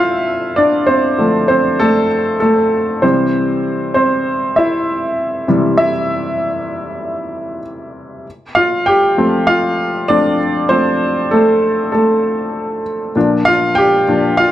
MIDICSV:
0, 0, Header, 1, 2, 480
1, 0, Start_track
1, 0, Key_signature, -1, "major"
1, 0, Tempo, 614125
1, 684, Time_signature, 4, 2, 24, 8
1, 11346, End_track
2, 0, Start_track
2, 0, Title_t, "Upright piano"
2, 0, Program_c, 0, 0
2, 0, Control_c, 0, 64, 127
2, 0, Note_on_c, 0, 50, 47
2, 0, Note_on_c, 0, 53, 39
2, 0, Note_on_c, 0, 57, 49
2, 0, Note_on_c, 0, 60, 57
2, 0, Note_on_c, 0, 64, 63
2, 0, Note_on_c, 0, 65, 65
2, 0, Note_on_c, 0, 72, 78
2, 0, Note_on_c, 0, 76, 81
2, 0, Note_on_c, 0, 77, 81
2, 421, Note_off_c, 0, 65, 0
2, 439, Note_on_c, 0, 74, 73
2, 455, Note_on_c, 0, 62, 53
2, 457, Note_off_c, 0, 77, 0
2, 673, Note_off_c, 0, 62, 0
2, 676, Note_off_c, 0, 72, 0
2, 676, Note_on_c, 0, 72, 71
2, 689, Note_off_c, 0, 74, 0
2, 692, Note_off_c, 0, 60, 0
2, 692, Note_on_c, 0, 60, 56
2, 925, Note_off_c, 0, 50, 0
2, 925, Note_on_c, 0, 50, 53
2, 932, Note_off_c, 0, 53, 0
2, 932, Note_on_c, 0, 53, 48
2, 936, Note_off_c, 0, 57, 0
2, 936, Note_on_c, 0, 57, 57
2, 1138, Note_off_c, 0, 60, 0
2, 1146, Note_off_c, 0, 72, 0
2, 1157, Note_on_c, 0, 72, 74
2, 1174, Note_on_c, 0, 60, 58
2, 1393, Note_off_c, 0, 60, 0
2, 1403, Note_on_c, 0, 69, 89
2, 1407, Note_off_c, 0, 57, 0
2, 1409, Note_off_c, 0, 72, 0
2, 1418, Note_on_c, 0, 57, 59
2, 1615, Note_off_c, 0, 50, 0
2, 1618, Note_off_c, 0, 53, 0
2, 1853, Note_off_c, 0, 69, 0
2, 1861, Note_off_c, 0, 57, 0
2, 1876, Note_on_c, 0, 69, 70
2, 1893, Note_on_c, 0, 57, 59
2, 2338, Note_off_c, 0, 57, 0
2, 2361, Note_on_c, 0, 72, 71
2, 2366, Note_on_c, 0, 48, 49
2, 2371, Note_on_c, 0, 52, 41
2, 2376, Note_off_c, 0, 69, 0
2, 2376, Note_on_c, 0, 60, 59
2, 2377, Control_c, 0, 64, 0
2, 2377, Note_on_c, 0, 55, 54
2, 2381, Note_off_c, 0, 76, 0
2, 2382, Note_off_c, 0, 64, 0
2, 2534, Control_c, 0, 64, 127
2, 3061, Note_off_c, 0, 60, 0
2, 3071, Note_off_c, 0, 72, 0
2, 3082, Note_on_c, 0, 72, 72
2, 3097, Note_on_c, 0, 60, 59
2, 3541, Note_off_c, 0, 60, 0
2, 3566, Note_on_c, 0, 76, 75
2, 3579, Note_off_c, 0, 72, 0
2, 3583, Note_on_c, 0, 64, 58
2, 4255, Note_off_c, 0, 76, 0
2, 4256, Note_off_c, 0, 48, 0
2, 4259, Note_off_c, 0, 52, 0
2, 4262, Note_off_c, 0, 55, 0
2, 4264, Note_off_c, 0, 64, 0
2, 4284, Note_on_c, 0, 48, 49
2, 4287, Note_on_c, 0, 52, 45
2, 4294, Note_on_c, 0, 55, 49
2, 4514, Note_on_c, 0, 76, 91
2, 4531, Note_on_c, 0, 64, 70
2, 4605, Note_off_c, 0, 48, 0
2, 4607, Note_off_c, 0, 52, 0
2, 4610, Note_off_c, 0, 55, 0
2, 5929, Note_off_c, 0, 76, 0
2, 5938, Note_off_c, 0, 64, 0
2, 6459, Control_c, 0, 64, 0
2, 6596, Control_c, 0, 64, 127
2, 6682, Note_on_c, 0, 77, 86
2, 6695, Note_on_c, 0, 65, 70
2, 6914, Note_off_c, 0, 65, 0
2, 6925, Note_on_c, 0, 79, 88
2, 6932, Note_off_c, 0, 77, 0
2, 6939, Note_on_c, 0, 67, 68
2, 7169, Note_on_c, 0, 53, 52
2, 7174, Note_on_c, 0, 57, 46
2, 7178, Note_on_c, 0, 60, 54
2, 7381, Note_off_c, 0, 67, 0
2, 7401, Note_on_c, 0, 77, 91
2, 7415, Note_on_c, 0, 65, 68
2, 7420, Note_off_c, 0, 79, 0
2, 7852, Note_off_c, 0, 77, 0
2, 7859, Note_off_c, 0, 65, 0
2, 7876, Note_off_c, 0, 53, 0
2, 7878, Note_off_c, 0, 57, 0
2, 7881, Note_on_c, 0, 74, 82
2, 7883, Note_off_c, 0, 60, 0
2, 7888, Note_on_c, 0, 53, 43
2, 7889, Note_on_c, 0, 57, 37
2, 7895, Note_on_c, 0, 60, 47
2, 7895, Note_on_c, 0, 62, 64
2, 8103, Note_off_c, 0, 53, 0
2, 8104, Note_off_c, 0, 57, 0
2, 8107, Note_off_c, 0, 60, 0
2, 8339, Note_off_c, 0, 62, 0
2, 8355, Note_on_c, 0, 72, 85
2, 8362, Note_on_c, 0, 53, 47
2, 8368, Note_on_c, 0, 57, 42
2, 8372, Note_on_c, 0, 60, 65
2, 8378, Note_off_c, 0, 74, 0
2, 8817, Note_off_c, 0, 60, 0
2, 8840, Note_on_c, 0, 69, 69
2, 8845, Note_off_c, 0, 57, 0
2, 8854, Note_off_c, 0, 72, 0
2, 8857, Note_on_c, 0, 57, 60
2, 9299, Note_off_c, 0, 57, 0
2, 9305, Note_off_c, 0, 69, 0
2, 9317, Note_on_c, 0, 69, 65
2, 9337, Note_on_c, 0, 57, 50
2, 10008, Note_off_c, 0, 69, 0
2, 10019, Note_off_c, 0, 57, 0
2, 10250, Note_off_c, 0, 53, 0
2, 10282, Note_on_c, 0, 46, 51
2, 10288, Note_on_c, 0, 53, 48
2, 10292, Note_on_c, 0, 62, 56
2, 10293, Control_c, 0, 64, 0
2, 10434, Control_c, 0, 64, 127
2, 10514, Note_on_c, 0, 77, 98
2, 10535, Note_on_c, 0, 65, 76
2, 10748, Note_on_c, 0, 79, 96
2, 10752, Note_off_c, 0, 65, 0
2, 10765, Note_off_c, 0, 77, 0
2, 10767, Note_on_c, 0, 67, 72
2, 10970, Note_off_c, 0, 46, 0
2, 10973, Note_off_c, 0, 53, 0
2, 10975, Note_off_c, 0, 62, 0
2, 11005, Note_on_c, 0, 46, 46
2, 11006, Note_on_c, 0, 53, 44
2, 11010, Note_on_c, 0, 62, 52
2, 11213, Note_off_c, 0, 67, 0
2, 11219, Note_off_c, 0, 46, 0
2, 11220, Note_off_c, 0, 53, 0
2, 11222, Note_off_c, 0, 62, 0
2, 11235, Note_on_c, 0, 77, 93
2, 11249, Note_off_c, 0, 79, 0
2, 11252, Note_on_c, 0, 65, 76
2, 11346, Note_off_c, 0, 65, 0
2, 11346, Note_off_c, 0, 77, 0
2, 11346, End_track
0, 0, End_of_file